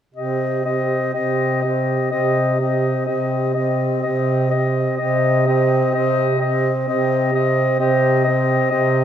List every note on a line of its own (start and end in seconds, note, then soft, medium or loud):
0.14 1.01 C3 soft
0.14 0.64 C4 soft
0.14 0.63 G4 soft
0.14 0.63 D#5 soft
0.64 1.13 C4 soft
0.64 1.12 G4 soft
0.64 1.13 D#5 soft
1.13 1.99 C3 soft
1.13 1.62 C4 soft
1.13 1.61 G4 soft
1.13 1.60 D#5 soft
1.61 2.11 C4 soft
1.61 2.10 G4 soft
1.61 2.09 D#5 soft
2.11 2.96 C3 soft
2.11 2.59 C4 soft
2.11 2.58 G4 soft
2.11 2.58 D#5 soft
2.58 3.07 C4 soft
2.58 3.05 G4 soft
2.58 3.05 D#5 soft
3.06 3.92 C3 soft
3.06 3.55 C4 soft
3.06 3.53 G4 soft
3.06 3.54 D#5 soft
3.54 4.03 C4 soft
3.54 4.01 G4 soft
3.54 4.02 D#5 soft
4.01 4.88 C3 soft
4.01 4.49 G4 soft
4.01 4.50 D#5 soft
4.06 4.52 C4 soft
4.50 4.97 G4 soft
4.50 4.97 D#5 soft
4.54 4.99 C4 soft
4.97 5.83 C3 soft
4.97 5.47 C4 soft
4.97 5.46 G4 soft
4.97 5.45 D#5 soft
5.46 5.94 C4 soft
5.46 5.92 G4 soft
5.46 5.93 D#5 soft
5.92 6.76 C3 soft
5.92 6.28 C4 soft
5.92 6.39 G4 soft
5.92 6.40 D#5 soft
6.39 6.87 C4 soft
6.39 6.74 G4 soft
6.39 6.74 D#5 soft
6.87 7.69 C3 soft
6.87 7.33 C4 soft
6.87 7.32 G4 soft
6.87 7.33 D#5 soft
7.33 7.78 C4 soft
7.33 7.78 G4 soft
7.33 7.79 D#5 soft
7.79 8.60 C3 medium
7.79 8.24 C4 soft
7.79 8.24 G4 soft
7.79 8.24 D#5 soft
8.24 8.70 G4 soft
8.24 8.69 D#5 soft
8.28 8.71 C4 soft
8.70 9.04 C3 medium
8.70 9.04 C4 soft
8.70 9.04 G4 soft
8.70 9.04 D#5 soft